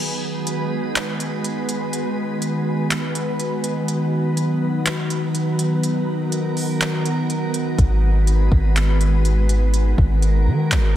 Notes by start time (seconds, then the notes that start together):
Already playing: D#3 G#3 B3 F#4 B4
0.47 closed hi-hat
0.96 clap, closed hi-hat
1.20 closed hi-hat
1.44 closed hi-hat
1.69 closed hi-hat
1.93 closed hi-hat
2.42 closed hi-hat
2.91 clap, closed hi-hat
3.15 closed hi-hat
3.40 closed hi-hat
3.64 closed hi-hat
3.88 F#3, closed hi-hat
4.37 closed hi-hat
4.86 clap, closed hi-hat
5.10 closed hi-hat
5.35 closed hi-hat
5.59 closed hi-hat
5.83 A#4, closed hi-hat
6.32 closed hi-hat
6.57 open hi-hat
6.81 clap, closed hi-hat
7.06 closed hi-hat
7.30 closed hi-hat
7.54 closed hi-hat
7.78 G#1 G#3 B4, kick, closed hi-hat
8.27 closed hi-hat
8.52 G#1, kick
8.76 clap, closed hi-hat
9.01 closed hi-hat
9.25 closed hi-hat
9.49 closed hi-hat
9.74 A#4, closed hi-hat
9.98 G#1, kick
10.22 closed hi-hat
10.47 D#3
10.71 G#1, clap, closed hi-hat